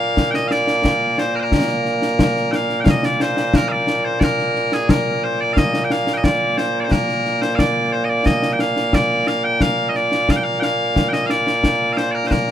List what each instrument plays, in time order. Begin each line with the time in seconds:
Already playing: bagpipes A#2 A#3 F5
0.17 concert bass drum, snare
0.31 bagpipes G5, snare
0.35 bagpipes D#5
0.48 bagpipes D5 F5, snare
0.67 snare
0.84 concert bass drum, snare
1.18 bagpipes C5, snare
1.35 bagpipes A#4
1.40 bagpipes A#4 C5
1.52 bagpipes A#4, concert bass drum, snare
1.69 snare
1.85 snare
2.02 snare
2.19 concert bass drum, snare
2.36 snare
2.52 bagpipes F5 G5, snare
2.69 snare
2.80 bagpipes G5
2.84 bagpipes F5, concert bass drum, snare
2.90 bagpipes D#5
3.03 bagpipes D5, snare
3.20 bagpipes C5, snare
3.37 snare
3.53 bagpipes A#4, concert bass drum, snare
3.69 bagpipes D5 F5
3.87 snare
4.05 bagpipes C5
4.20 bagpipes A#4 D5, concert bass drum, snare
4.38 snare
4.55 snare
4.72 bagpipes G#4, snare
4.89 bagpipes A#4, concert bass drum, snare
5.24 bagpipes C5
5.41 bagpipes D5
5.53 bagpipes F5, concert bass drum, snare
5.58 bagpipes D#5
5.74 snare
5.84 bagpipes G5
5.90 bagpipes F5, snare
6.07 snare
6.13 bagpipes D#5 G5
6.24 bagpipes D5, concert bass drum, snare
6.58 bagpipes C5, snare
6.80 bagpipes C5 D5
6.91 bagpipes A#4, concert bass drum, snare
7.08 snare
7.25 snare
7.42 bagpipes C5, snare
7.55 bagpipes D5 F5, concert bass drum, snare
7.92 bagpipes C5
8.05 bagpipes D#5
8.10 bagpipes D5
8.26 bagpipes D#5, concert bass drum, snare
8.42 snare
8.53 bagpipes G5
8.59 bagpipes F5, snare
8.77 snare
8.93 bagpipes D5, concert bass drum, snare
9.27 bagpipes F5, snare
9.44 bagpipes G5
9.60 bagpipes F5, concert bass drum, snare
9.89 bagpipes D#5
9.95 bagpipes D5, snare
10.12 snare
10.29 bagpipes F5, concert bass drum, snare
10.36 bagpipes G5
10.43 bagpipes F5
10.60 bagpipes F5 G5, snare
10.96 concert bass drum, snare
11.09 bagpipes G5
11.13 bagpipes D#5, snare
11.26 bagpipes F5, snare
11.30 bagpipes D5
11.47 snare
11.64 concert bass drum, snare
11.93 bagpipes F5
11.97 bagpipes C5, snare
12.11 bagpipes A#4 D5
12.27 bagpipes C5
12.31 bagpipes A#4, concert bass drum, snare
12.48 snare